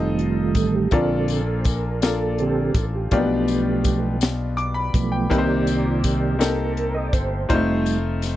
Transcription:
Already playing: F1 D#3 G3 A3 C4 D#4 F4 A4 D#5
0.19 F4, closed hi-hat
0.55 A1 A4, kick, closed hi-hat, tambourine
0.76 G4
0.91 A#1 A#2 D3 A#3 C4 D4 F4 A4 D5, kick, closed hi-hat
0.95 F4
1.28 A4, closed hi-hat, tambourine
1.59 C5
1.64 kick, closed hi-hat, tambourine
1.69 A#4
2.02 A#3 D4 F4 A4 D5, snare, closed hi-hat, tambourine
2.38 D3 C4 G4 A4, closed hi-hat
2.75 A1 A4, kick, closed hi-hat, tambourine
2.95 G4
3.11 B1 B2 F3 A3 A#3 B3 D4 F4 G4 D5, kick, closed hi-hat
3.18 B3
3.48 closed hi-hat, tambourine
3.84 kick, closed hi-hat, tambourine
4.21 snare, closed hi-hat, tambourine
4.57 D6, closed hi-hat
4.74 B5
4.94 B1 F3 A3 B3, kick, closed hi-hat, tambourine
5.12 G5
5.29 C2 C3 D#3 A#3 C4 D#4 G4 B4 D5, kick, closed hi-hat
5.38 C5
5.67 closed hi-hat, tambourine
5.86 F4
6.04 G4, kick, closed hi-hat, tambourine
6.39 A#3 C4 D#4 G4 A4 A#4, snare, closed hi-hat, tambourine
6.77 closed hi-hat
6.95 D#5
7.07 D5
7.13 G1 C5, kick, closed hi-hat, tambourine
7.49 F1 G3 A3 C4 D#4 F4 C5, kick, closed hi-hat
7.55 A3
7.86 closed hi-hat, tambourine
8.22 snare, closed hi-hat, tambourine

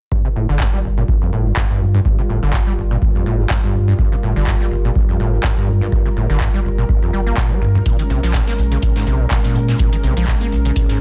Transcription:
0.12 G2 G3 F4 A#4, kick
0.25 C3
0.36 G1 A2
0.49 G1 D3
0.60 G2, kick, clap
0.73 G3
0.84 G1
0.98 A#2
1.08 G1, kick
1.22 F2
1.33 G1 A2
1.46 G2
1.57 G2, kick, clap
1.70 G2
1.81 F2 G2
1.94 G2
2.05 G2, kick
2.18 C3
2.29 G1 A2
2.43 G1 D3
2.53 G2, kick, clap
2.67 G3
2.78 G1
2.91 A#2
3.02 G1, kick
3.15 F2
3.26 G1 A2
3.39 G2
3.50 G2, kick, clap
3.64 G2
3.75 F2 G2
3.88 G2
3.99 G2, kick
4.12 C3
4.23 G1 A2
4.36 G1 D3
4.47 G2, kick, clap
4.60 G3
4.71 G1
4.85 A#2
4.96 G1, kick
5.09 F2
5.20 G1 A2
5.33 G2
5.44 G2, kick, clap
5.57 G2
5.68 F2 G2
5.81 G2
5.92 G2, kick
6.06 C3
6.16 G1 A2
6.30 G1 D3
6.41 G2, kick, clap
6.54 G3
6.65 G1
6.78 A#2
6.89 G1, kick
7.02 F2
7.13 G1 G3
7.26 A#3
7.37 A#2, kick, clap
7.51 G3
7.62 G1 G2
7.75 F2
7.86 A#2 G#3 C#4, kick, closed hi-hat
7.99 D#3, closed hi-hat
8.10 A#1 C3, closed hi-hat
8.23 A#1 F3, snare, closed hi-hat
8.34 A#2, kick, snare, clap, closed hi-hat
8.47 A#3, snare, closed hi-hat
8.58 A#1, closed hi-hat
8.72 C#3, closed hi-hat
8.82 A#1, kick, closed hi-hat
8.96 G#2, snare, closed hi-hat
9.07 A#1 C3, closed hi-hat
9.20 A#2
9.30 A#2, kick, snare, clap, closed hi-hat
9.44 A#2, snare, closed hi-hat
9.55 G#2 A#2, closed hi-hat
9.68 A#2, snare, closed hi-hat
9.78 A#2, kick, closed hi-hat
9.93 D#3, closed hi-hat
10.03 A#1 C3, closed hi-hat
10.17 A#1 F3, closed hi-hat
10.28 A#2, kick, snare, clap, closed hi-hat
10.41 A#3, closed hi-hat
10.52 A#1, closed hi-hat
10.65 C#3, closed hi-hat
10.76 A#1, kick, closed hi-hat
10.89 G#2, snare, closed hi-hat

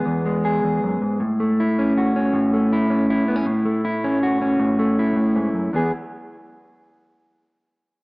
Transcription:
Already playing: E3 G#3 B3 G#4
0.06 E2
0.26 G#3
0.45 G#4
0.64 E2
0.83 F#2
1.01 G#2
1.20 A2
1.40 A3
1.60 E4
1.79 C#4
1.98 F#4
2.16 C#4
2.33 A2
2.53 A3
2.73 E4
2.90 C#4
3.10 E4
3.28 B3
3.36 C#4
3.46 A2
3.65 A3
3.85 E4
4.04 C#4
4.23 F#4
4.42 C#4
4.60 A2
4.79 A3
4.99 E4
5.16 A2
5.36 G#2
5.53 F#2
5.73 E2 B3 G#4, muted clean electric guitar stroke

